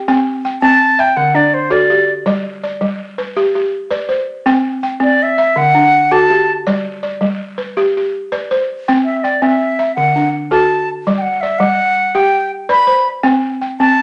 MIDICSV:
0, 0, Header, 1, 3, 480
1, 0, Start_track
1, 0, Tempo, 365854
1, 88, Time_signature, 12, 3, 24, 8
1, 18396, End_track
2, 0, Start_track
2, 0, Title_t, "Flute"
2, 0, Program_c, 0, 73
2, 809, Note_on_c, 0, 81, 108
2, 1312, Note_on_c, 0, 79, 99
2, 1331, Note_off_c, 0, 81, 0
2, 1528, Note_on_c, 0, 78, 87
2, 1548, Note_off_c, 0, 79, 0
2, 1772, Note_on_c, 0, 74, 80
2, 1792, Note_off_c, 0, 78, 0
2, 2019, Note_on_c, 0, 72, 79
2, 2039, Note_off_c, 0, 74, 0
2, 2256, Note_on_c, 0, 74, 72
2, 2276, Note_off_c, 0, 72, 0
2, 2793, Note_off_c, 0, 74, 0
2, 6599, Note_on_c, 0, 74, 81
2, 6860, Note_on_c, 0, 76, 89
2, 6880, Note_off_c, 0, 74, 0
2, 7316, Note_on_c, 0, 78, 98
2, 7335, Note_off_c, 0, 76, 0
2, 8028, Note_on_c, 0, 81, 94
2, 8048, Note_off_c, 0, 78, 0
2, 8564, Note_off_c, 0, 81, 0
2, 11870, Note_on_c, 0, 76, 63
2, 12117, Note_on_c, 0, 74, 66
2, 12137, Note_off_c, 0, 76, 0
2, 12360, Note_on_c, 0, 76, 77
2, 12380, Note_off_c, 0, 74, 0
2, 13051, Note_off_c, 0, 76, 0
2, 13059, Note_on_c, 0, 78, 77
2, 13508, Note_off_c, 0, 78, 0
2, 13794, Note_on_c, 0, 81, 88
2, 14292, Note_off_c, 0, 81, 0
2, 14664, Note_on_c, 0, 79, 65
2, 14715, Note_on_c, 0, 78, 74
2, 14735, Note_off_c, 0, 79, 0
2, 14970, Note_on_c, 0, 76, 80
2, 14990, Note_off_c, 0, 78, 0
2, 15203, Note_on_c, 0, 78, 97
2, 15223, Note_off_c, 0, 76, 0
2, 15939, Note_on_c, 0, 79, 89
2, 15959, Note_off_c, 0, 78, 0
2, 16420, Note_off_c, 0, 79, 0
2, 16667, Note_on_c, 0, 83, 97
2, 17165, Note_off_c, 0, 83, 0
2, 18106, Note_on_c, 0, 81, 97
2, 18396, Note_off_c, 0, 81, 0
2, 18396, End_track
3, 0, Start_track
3, 0, Title_t, "Balafon"
3, 0, Program_c, 1, 12
3, 107, Note_on_c, 1, 60, 84
3, 109, Note_on_c, 1, 79, 60
3, 574, Note_off_c, 1, 79, 0
3, 578, Note_off_c, 1, 60, 0
3, 590, Note_on_c, 1, 79, 57
3, 819, Note_on_c, 1, 60, 83
3, 1294, Note_off_c, 1, 60, 0
3, 1297, Note_on_c, 1, 76, 65
3, 1299, Note_off_c, 1, 79, 0
3, 1530, Note_on_c, 1, 50, 65
3, 1765, Note_on_c, 1, 62, 57
3, 1773, Note_off_c, 1, 76, 0
3, 2009, Note_off_c, 1, 50, 0
3, 2235, Note_on_c, 1, 66, 65
3, 2240, Note_on_c, 1, 69, 56
3, 2487, Note_off_c, 1, 62, 0
3, 2490, Note_on_c, 1, 67, 63
3, 2722, Note_off_c, 1, 66, 0
3, 2964, Note_off_c, 1, 69, 0
3, 2965, Note_on_c, 1, 55, 84
3, 2968, Note_on_c, 1, 74, 58
3, 3210, Note_off_c, 1, 67, 0
3, 3441, Note_off_c, 1, 74, 0
3, 3447, Note_off_c, 1, 55, 0
3, 3457, Note_on_c, 1, 74, 59
3, 3687, Note_on_c, 1, 55, 68
3, 4169, Note_off_c, 1, 55, 0
3, 4174, Note_off_c, 1, 74, 0
3, 4175, Note_on_c, 1, 71, 66
3, 4415, Note_on_c, 1, 67, 75
3, 4646, Note_off_c, 1, 67, 0
3, 4662, Note_on_c, 1, 67, 57
3, 4894, Note_off_c, 1, 71, 0
3, 5124, Note_on_c, 1, 71, 70
3, 5130, Note_on_c, 1, 74, 63
3, 5362, Note_on_c, 1, 72, 61
3, 5377, Note_off_c, 1, 67, 0
3, 5609, Note_off_c, 1, 71, 0
3, 5850, Note_on_c, 1, 60, 82
3, 5852, Note_off_c, 1, 74, 0
3, 5856, Note_on_c, 1, 79, 73
3, 6088, Note_off_c, 1, 72, 0
3, 6323, Note_off_c, 1, 79, 0
3, 6332, Note_off_c, 1, 60, 0
3, 6338, Note_on_c, 1, 79, 60
3, 6561, Note_on_c, 1, 60, 73
3, 7048, Note_off_c, 1, 60, 0
3, 7057, Note_off_c, 1, 79, 0
3, 7060, Note_on_c, 1, 76, 62
3, 7293, Note_on_c, 1, 50, 74
3, 7539, Note_off_c, 1, 76, 0
3, 7540, Note_on_c, 1, 62, 63
3, 7775, Note_off_c, 1, 50, 0
3, 8020, Note_on_c, 1, 69, 58
3, 8022, Note_on_c, 1, 66, 78
3, 8260, Note_off_c, 1, 62, 0
3, 8267, Note_on_c, 1, 67, 66
3, 8501, Note_off_c, 1, 66, 0
3, 8740, Note_off_c, 1, 69, 0
3, 8747, Note_on_c, 1, 74, 71
3, 8748, Note_on_c, 1, 55, 82
3, 8984, Note_off_c, 1, 67, 0
3, 9207, Note_off_c, 1, 74, 0
3, 9223, Note_on_c, 1, 74, 57
3, 9225, Note_off_c, 1, 55, 0
3, 9458, Note_on_c, 1, 55, 77
3, 9940, Note_off_c, 1, 55, 0
3, 9943, Note_off_c, 1, 74, 0
3, 9944, Note_on_c, 1, 71, 63
3, 10193, Note_on_c, 1, 67, 75
3, 10440, Note_off_c, 1, 67, 0
3, 10456, Note_on_c, 1, 67, 51
3, 10664, Note_off_c, 1, 71, 0
3, 10917, Note_on_c, 1, 71, 64
3, 10918, Note_on_c, 1, 74, 53
3, 11160, Note_off_c, 1, 67, 0
3, 11166, Note_on_c, 1, 72, 66
3, 11391, Note_off_c, 1, 71, 0
3, 11632, Note_off_c, 1, 74, 0
3, 11653, Note_on_c, 1, 79, 71
3, 11659, Note_on_c, 1, 60, 80
3, 11875, Note_off_c, 1, 72, 0
3, 12109, Note_off_c, 1, 79, 0
3, 12122, Note_off_c, 1, 60, 0
3, 12125, Note_on_c, 1, 79, 58
3, 12361, Note_on_c, 1, 60, 76
3, 12833, Note_off_c, 1, 60, 0
3, 12835, Note_off_c, 1, 79, 0
3, 12845, Note_on_c, 1, 76, 61
3, 13080, Note_on_c, 1, 50, 70
3, 13315, Note_off_c, 1, 76, 0
3, 13326, Note_on_c, 1, 62, 54
3, 13553, Note_off_c, 1, 50, 0
3, 13792, Note_on_c, 1, 69, 62
3, 13797, Note_on_c, 1, 66, 68
3, 14035, Note_off_c, 1, 62, 0
3, 14271, Note_off_c, 1, 66, 0
3, 14508, Note_off_c, 1, 69, 0
3, 14523, Note_on_c, 1, 55, 80
3, 14524, Note_on_c, 1, 74, 59
3, 14979, Note_off_c, 1, 74, 0
3, 14993, Note_off_c, 1, 55, 0
3, 14994, Note_on_c, 1, 74, 56
3, 15221, Note_on_c, 1, 55, 79
3, 15702, Note_off_c, 1, 55, 0
3, 15708, Note_off_c, 1, 74, 0
3, 15937, Note_on_c, 1, 67, 71
3, 16419, Note_off_c, 1, 67, 0
3, 16652, Note_on_c, 1, 71, 74
3, 16652, Note_on_c, 1, 74, 56
3, 16886, Note_on_c, 1, 72, 66
3, 17135, Note_off_c, 1, 71, 0
3, 17363, Note_on_c, 1, 79, 64
3, 17364, Note_on_c, 1, 60, 83
3, 17374, Note_off_c, 1, 74, 0
3, 17610, Note_off_c, 1, 72, 0
3, 17847, Note_off_c, 1, 79, 0
3, 17849, Note_off_c, 1, 60, 0
3, 17863, Note_on_c, 1, 79, 53
3, 18107, Note_on_c, 1, 60, 77
3, 18396, Note_off_c, 1, 60, 0
3, 18396, Note_off_c, 1, 79, 0
3, 18396, End_track
0, 0, End_of_file